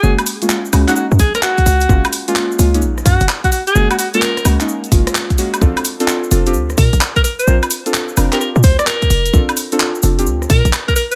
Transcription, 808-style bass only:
0, 0, Header, 1, 2, 480
1, 0, Start_track
1, 0, Tempo, 465116
1, 34, Time_signature, 4, 2, 24, 8
1, 11509, End_track
2, 0, Start_track
2, 0, Title_t, "808-style bass"
2, 0, Program_c, 0, 38
2, 34, Note_on_c, 0, 30, 102
2, 162, Note_off_c, 0, 30, 0
2, 755, Note_on_c, 0, 37, 85
2, 882, Note_off_c, 0, 37, 0
2, 1151, Note_on_c, 0, 42, 84
2, 1218, Note_off_c, 0, 42, 0
2, 1233, Note_on_c, 0, 34, 91
2, 1361, Note_off_c, 0, 34, 0
2, 1715, Note_on_c, 0, 37, 88
2, 1923, Note_off_c, 0, 37, 0
2, 1953, Note_on_c, 0, 30, 100
2, 2081, Note_off_c, 0, 30, 0
2, 2673, Note_on_c, 0, 37, 83
2, 2913, Note_on_c, 0, 34, 106
2, 2929, Note_off_c, 0, 37, 0
2, 3122, Note_off_c, 0, 34, 0
2, 3154, Note_on_c, 0, 42, 95
2, 3281, Note_off_c, 0, 42, 0
2, 3311, Note_on_c, 0, 30, 101
2, 3378, Note_off_c, 0, 30, 0
2, 3874, Note_on_c, 0, 30, 99
2, 4001, Note_off_c, 0, 30, 0
2, 4594, Note_on_c, 0, 37, 82
2, 4722, Note_off_c, 0, 37, 0
2, 5075, Note_on_c, 0, 30, 106
2, 5202, Note_off_c, 0, 30, 0
2, 5795, Note_on_c, 0, 34, 101
2, 5922, Note_off_c, 0, 34, 0
2, 6516, Note_on_c, 0, 29, 82
2, 6754, Note_on_c, 0, 38, 103
2, 6770, Note_off_c, 0, 29, 0
2, 6963, Note_off_c, 0, 38, 0
2, 6994, Note_on_c, 0, 46, 98
2, 7122, Note_off_c, 0, 46, 0
2, 7153, Note_on_c, 0, 34, 102
2, 7219, Note_off_c, 0, 34, 0
2, 7714, Note_on_c, 0, 34, 99
2, 7842, Note_off_c, 0, 34, 0
2, 8434, Note_on_c, 0, 29, 83
2, 8561, Note_off_c, 0, 29, 0
2, 8832, Note_on_c, 0, 46, 89
2, 8898, Note_off_c, 0, 46, 0
2, 8914, Note_on_c, 0, 38, 90
2, 9041, Note_off_c, 0, 38, 0
2, 9394, Note_on_c, 0, 29, 86
2, 9602, Note_off_c, 0, 29, 0
2, 9634, Note_on_c, 0, 34, 100
2, 9762, Note_off_c, 0, 34, 0
2, 10353, Note_on_c, 0, 29, 80
2, 10594, Note_on_c, 0, 38, 104
2, 10610, Note_off_c, 0, 29, 0
2, 10802, Note_off_c, 0, 38, 0
2, 10834, Note_on_c, 0, 46, 93
2, 10961, Note_off_c, 0, 46, 0
2, 10991, Note_on_c, 0, 34, 106
2, 11058, Note_off_c, 0, 34, 0
2, 11509, End_track
0, 0, End_of_file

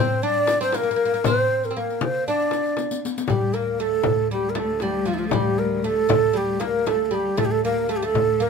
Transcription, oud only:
0, 0, Header, 1, 2, 480
1, 0, Start_track
1, 0, Tempo, 511073
1, 1169, Time_signature, 4, 2, 24, 8
1, 7980, End_track
2, 0, Start_track
2, 0, Title_t, "Oud"
2, 0, Program_c, 0, 24
2, 0, Note_on_c, 0, 60, 71
2, 213, Note_off_c, 0, 60, 0
2, 217, Note_on_c, 0, 62, 70
2, 566, Note_off_c, 0, 62, 0
2, 570, Note_on_c, 0, 60, 70
2, 681, Note_off_c, 0, 60, 0
2, 697, Note_on_c, 0, 58, 67
2, 759, Note_off_c, 0, 58, 0
2, 782, Note_on_c, 0, 58, 49
2, 837, Note_off_c, 0, 58, 0
2, 854, Note_on_c, 0, 58, 58
2, 892, Note_off_c, 0, 58, 0
2, 903, Note_on_c, 0, 58, 49
2, 967, Note_off_c, 0, 58, 0
2, 990, Note_on_c, 0, 58, 58
2, 1046, Note_off_c, 0, 58, 0
2, 1069, Note_on_c, 0, 58, 51
2, 1121, Note_off_c, 0, 58, 0
2, 1189, Note_on_c, 0, 60, 80
2, 1590, Note_off_c, 0, 60, 0
2, 1602, Note_on_c, 0, 60, 44
2, 1658, Note_on_c, 0, 58, 63
2, 1659, Note_off_c, 0, 60, 0
2, 2140, Note_on_c, 0, 62, 68
2, 2149, Note_off_c, 0, 58, 0
2, 2818, Note_off_c, 0, 62, 0
2, 3096, Note_on_c, 0, 55, 63
2, 3317, Note_off_c, 0, 55, 0
2, 3321, Note_on_c, 0, 58, 63
2, 3564, Note_off_c, 0, 58, 0
2, 3568, Note_on_c, 0, 57, 65
2, 4047, Note_off_c, 0, 57, 0
2, 4051, Note_on_c, 0, 55, 63
2, 4271, Note_off_c, 0, 55, 0
2, 4275, Note_on_c, 0, 57, 65
2, 4523, Note_off_c, 0, 57, 0
2, 4526, Note_on_c, 0, 55, 62
2, 4747, Note_on_c, 0, 53, 60
2, 4776, Note_off_c, 0, 55, 0
2, 5005, Note_on_c, 0, 55, 70
2, 5007, Note_off_c, 0, 53, 0
2, 5455, Note_off_c, 0, 55, 0
2, 5488, Note_on_c, 0, 57, 70
2, 5706, Note_off_c, 0, 57, 0
2, 5718, Note_on_c, 0, 57, 66
2, 5945, Note_off_c, 0, 57, 0
2, 5949, Note_on_c, 0, 55, 64
2, 6193, Note_off_c, 0, 55, 0
2, 6197, Note_on_c, 0, 58, 72
2, 6444, Note_off_c, 0, 58, 0
2, 6448, Note_on_c, 0, 57, 67
2, 6672, Note_off_c, 0, 57, 0
2, 6676, Note_on_c, 0, 55, 68
2, 6922, Note_off_c, 0, 55, 0
2, 6925, Note_on_c, 0, 57, 78
2, 7175, Note_off_c, 0, 57, 0
2, 7182, Note_on_c, 0, 58, 74
2, 7408, Note_off_c, 0, 58, 0
2, 7411, Note_on_c, 0, 57, 74
2, 7526, Note_off_c, 0, 57, 0
2, 7537, Note_on_c, 0, 57, 72
2, 7886, Note_off_c, 0, 57, 0
2, 7890, Note_on_c, 0, 58, 75
2, 7980, Note_off_c, 0, 58, 0
2, 7980, End_track
0, 0, End_of_file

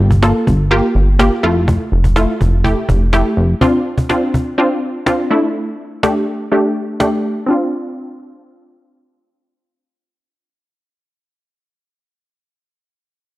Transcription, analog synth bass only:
0, 0, Header, 1, 2, 480
1, 0, Start_track
1, 0, Key_signature, -1, "minor"
1, 0, Tempo, 483871
1, 1665, Time_signature, 4, 2, 24, 8
1, 13271, End_track
2, 0, Start_track
2, 0, Title_t, "Analog synth bass"
2, 0, Program_c, 0, 38
2, 0, Note_on_c, 0, 31, 99
2, 330, Note_off_c, 0, 31, 0
2, 468, Note_on_c, 0, 31, 93
2, 811, Note_off_c, 0, 31, 0
2, 945, Note_on_c, 0, 31, 102
2, 1289, Note_off_c, 0, 31, 0
2, 1425, Note_on_c, 0, 29, 101
2, 1768, Note_off_c, 0, 29, 0
2, 1906, Note_on_c, 0, 29, 95
2, 2249, Note_off_c, 0, 29, 0
2, 2388, Note_on_c, 0, 29, 92
2, 2730, Note_off_c, 0, 29, 0
2, 2863, Note_on_c, 0, 29, 103
2, 3207, Note_off_c, 0, 29, 0
2, 3344, Note_on_c, 0, 29, 99
2, 3516, Note_off_c, 0, 29, 0
2, 13271, End_track
0, 0, End_of_file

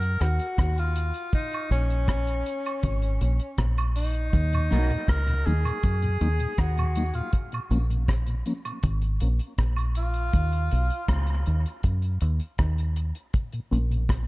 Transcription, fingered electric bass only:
0, 0, Header, 1, 2, 480
1, 0, Start_track
1, 0, Key_signature, -6, "minor"
1, 0, Tempo, 750657
1, 851, Time_signature, 4, 2, 24, 8
1, 9128, End_track
2, 0, Start_track
2, 0, Title_t, "Fingered electric bass"
2, 0, Program_c, 0, 33
2, 0, Note_on_c, 0, 42, 97
2, 115, Note_off_c, 0, 42, 0
2, 133, Note_on_c, 0, 39, 91
2, 244, Note_off_c, 0, 39, 0
2, 374, Note_on_c, 0, 39, 88
2, 708, Note_off_c, 0, 39, 0
2, 1092, Note_on_c, 0, 34, 97
2, 1546, Note_off_c, 0, 34, 0
2, 1814, Note_on_c, 0, 32, 98
2, 2035, Note_off_c, 0, 32, 0
2, 2054, Note_on_c, 0, 34, 94
2, 2164, Note_off_c, 0, 34, 0
2, 2293, Note_on_c, 0, 34, 84
2, 2746, Note_off_c, 0, 34, 0
2, 2772, Note_on_c, 0, 39, 110
2, 2993, Note_off_c, 0, 39, 0
2, 3017, Note_on_c, 0, 35, 86
2, 3126, Note_off_c, 0, 35, 0
2, 3250, Note_on_c, 0, 37, 83
2, 3472, Note_off_c, 0, 37, 0
2, 3496, Note_on_c, 0, 39, 92
2, 3605, Note_off_c, 0, 39, 0
2, 3734, Note_on_c, 0, 42, 99
2, 3954, Note_off_c, 0, 42, 0
2, 3972, Note_on_c, 0, 39, 87
2, 4083, Note_off_c, 0, 39, 0
2, 4211, Note_on_c, 0, 39, 97
2, 4546, Note_off_c, 0, 39, 0
2, 4928, Note_on_c, 0, 34, 100
2, 5383, Note_off_c, 0, 34, 0
2, 5651, Note_on_c, 0, 32, 100
2, 5872, Note_off_c, 0, 32, 0
2, 5893, Note_on_c, 0, 34, 93
2, 6003, Note_off_c, 0, 34, 0
2, 6129, Note_on_c, 0, 34, 90
2, 6583, Note_off_c, 0, 34, 0
2, 6610, Note_on_c, 0, 39, 110
2, 6831, Note_off_c, 0, 39, 0
2, 6857, Note_on_c, 0, 35, 88
2, 6965, Note_off_c, 0, 35, 0
2, 7089, Note_on_c, 0, 37, 82
2, 7310, Note_off_c, 0, 37, 0
2, 7335, Note_on_c, 0, 39, 91
2, 7444, Note_off_c, 0, 39, 0
2, 7571, Note_on_c, 0, 42, 93
2, 7791, Note_off_c, 0, 42, 0
2, 7812, Note_on_c, 0, 39, 89
2, 7922, Note_off_c, 0, 39, 0
2, 8050, Note_on_c, 0, 39, 92
2, 8385, Note_off_c, 0, 39, 0
2, 8775, Note_on_c, 0, 34, 100
2, 9128, Note_off_c, 0, 34, 0
2, 9128, End_track
0, 0, End_of_file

